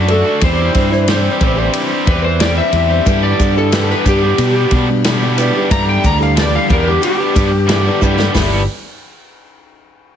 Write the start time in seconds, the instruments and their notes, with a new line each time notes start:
Already playing: fingered electric bass F#2, overdriven electric guitar D4 F#4
0.08 overdriven electric guitar D3 A3, reed electric piano F#4 A4 D5, electric slide guitar A4, twelve-string acoustic guitar A4, ride
0.12 overdriven electric guitar D4 F#4
0.24 overdriven electric guitar D4 F#4, twelve-string acoustic guitar A4
0.29 overdriven electric guitar A3
0.41 fingered electric bass E2, overdriven electric guitar E3 G3 C4 G4, twelve-string acoustic guitar D4, reed electric piano E4 C5 D5, electric slide guitar C5, kick, ride
0.73 fingered electric bass G2, twelve-string acoustic guitar G3 C4 D4 G4, kick, ride
0.90 reed electric piano E4 C5 D5, muted overdriven electric guitar stroke, snare
1.08 overdriven electric guitar E3 G3 C4 G4, twelve-string acoustic guitar D4, snare, ride
1.41 fingered electric bass A1, overdriven electric guitar E3 G3 C4 G4, twelve-string acoustic guitar D4, kick, ride
1.57 overdriven electric guitar G3 C4 G4, twelve-string acoustic guitar D4
1.73 ride
1.91 overdriven electric guitar G3 C4 G4
2.07 fingered electric bass E2, overdriven electric guitar E3 G3 C4 G4, twelve-string acoustic guitar D4, electric slide guitar B4, kick, ride
2.24 electric slide guitar C5, muted overdriven electric guitar stroke
2.40 overdriven electric guitar E3 G3 C4 G4, twelve-string acoustic guitar D4, electric slide guitar D5, snare, ride
2.55 twelve-string acoustic guitar C4 D4 G4, electric slide guitar E5
2.72 fingered electric bass E2, overdriven electric guitar E3 G3 C4, twelve-string acoustic guitar D4, reed electric piano E4 C5 E5, ride
2.77 overdriven electric guitar G4
2.90 overdriven electric guitar G3 C4 G4, twelve-string acoustic guitar D4
3.06 fingered electric bass G2, overdriven electric guitar G2 D3 G3 B3 D4 G4, twelve-string acoustic guitar E3, reed electric piano E4 G4 B4, kick, ride, shaker
3.23 electric slide guitar D5
3.39 fingered electric bass G2, twelve-string acoustic guitar G3 B3 D4 G4, kick, ride, shaker
3.56 reed electric piano E4 G4 B4, electric slide guitar A4, muted overdriven electric guitar stroke, shaker
3.72 overdriven electric guitar G2 D3 G3 B3 D4 G4, twelve-string acoustic guitar E3, snare, ride, shaker
3.90 electric slide guitar B4, snare
4.04 fingered electric bass G2, overdriven electric guitar G3 B3 D4 G4, kick, ride, shaker
4.09 electric slide guitar G4
4.21 overdriven electric guitar G3 B3 D4 G4
4.38 fingered electric bass B2, ride, shaker
4.54 overdriven electric guitar G3 B3 D4 G4
4.71 fingered electric bass B2, overdriven electric guitar G3 B3 D4 G4, kick, ride
4.89 muted overdriven electric guitar stroke
5.04 overdriven electric guitar G2 D3 G3 B3 D4 G4, twelve-string acoustic guitar E3, snare, ride, shaker
5.22 twelve-string acoustic guitar G3 B3 D4 G4
5.37 overdriven electric guitar G3 B3 D4 G4, reed electric piano E4 G4 B4, ride, shaker
5.53 overdriven electric guitar G3 B3 D4 G4
5.70 overdriven electric guitar G2 D3 G3 B3 D4 G4, fingered electric bass G2, twelve-string acoustic guitar E3, reed electric piano E4 G4 A4, electric slide guitar A#5, kick, ride, shaker
5.89 electric slide guitar G5
6.04 fingered electric bass D2, twelve-string acoustic guitar G3 B3 D4 G4, electric slide guitar A#5, kick, ride, shaker
6.19 reed electric piano E4 G4 A4, electric slide guitar F5, muted overdriven electric guitar stroke, snare, shaker
6.36 overdriven electric guitar G2 D3 G3 B3 D4 G4, twelve-string acoustic guitar E3, electric slide guitar D5, snare, ride, shaker
6.55 electric slide guitar F5
6.69 fingered electric bass E2, overdriven electric guitar G3 B3 D4 G4, electric slide guitar A#4, kick, ride
6.85 overdriven electric guitar G3 B3 D4 G4, electric slide guitar G4
7.02 electric slide guitar G4, ride, shaker
7.18 overdriven electric guitar G3 B3 D4 G4
7.34 fingered electric bass G2, overdriven electric guitar G3 B3 D4 G4, kick, ride, shaker
7.51 muted overdriven electric guitar stroke
7.66 overdriven electric guitar G2 D3 G3 B3 D4 G4, twelve-string acoustic guitar E3, snare, ride, shaker
7.86 twelve-string acoustic guitar G3 B3 D4 G4
8.01 fingered electric bass G2, overdriven electric guitar G3 B3 D4 G4, reed electric piano E4 G4 B4, kick, shaker
8.17 overdriven electric guitar G3 B3 D4 G4, snare, shaker
8.33 fingered electric bass G1, twelve-string acoustic guitar G2 D3, overdriven electric guitar G3 B3 D4 B4, reed electric piano E4 G4 B4, snare, floor tom, open hi-hat, shaker
8.38 twelve-string acoustic guitar E4 G4